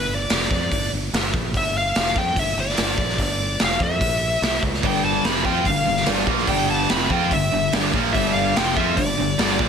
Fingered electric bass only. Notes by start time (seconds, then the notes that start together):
Already playing: G1
0.31 F1
0.51 F2
0.72 G1
0.93 G1
1.13 G1
1.34 A#1
1.55 G1
1.96 F1
2.15 F2
2.36 G1
2.57 G1
2.78 G1
2.98 A#1
3.19 G1
3.61 F1
3.80 F2
4.01 A#1
4.42 C2
4.63 C#2
4.84 G1
5.24 F1
5.46 F2
5.66 G1
5.87 G1
6.08 G1
6.27 A#1
6.48 G1
6.91 F1
7.10 F2
7.31 G1
7.53 G1
7.74 G1
7.94 A#1
8.15 G1
8.58 F1
8.77 F2
8.97 G1
9.19 G1
9.39 G1
9.60 A#1